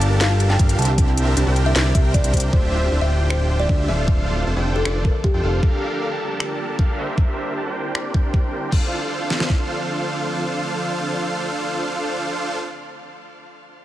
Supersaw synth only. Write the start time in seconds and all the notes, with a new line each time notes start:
Already playing: D4 G4 A4 A#4 A5
0.59 D4 G4 A4 A#4 F5
0.79 D4 G4 A#4 C5 E5
1.37 D4 G4 A#4 C5 A5
1.47 D4 G4 A#4 C5 G5
1.76 D4 G4 A#4 C5 D5
1.95 D4 G4 A#4 C5
2.24 D4 G4 A#4 C5 G5
2.53 D4 F4 G4 C5 E5
2.92 D4 F4 G4 C5 E5
3.01 D4 F4 G4 C5 G5
3.69 D4 G4 E5
3.88 D4 F4 A4 C5 F5
4.47 D4 F4 A4 C5 A5
4.56 D4 F4 A4 C5 G5
4.85 D4 F4 A4 C5 D5
5.34 D4 F4 A4 C5 G5
5.43 D4 F4 A4 C5 F5
5.63 D4 G4 A4 A#4 F5
6.01 D4 G4 A4 A#4 F5
6.11 D4 G4 A4 A#4 A5
6.79 D4 G4 A#4 F5
6.98 D4 G4 A#4 C5 E5
7.56 D4 G4 A#4 C5 A5
7.66 D4 G4 A#4 C5 G5
7.95 D4 G4 A#4 C5 D5
8.14 D4 G4 A#4 C5
8.44 D4 G4 A#4 C5 G5
8.72 D4 F4 A4 C5 F5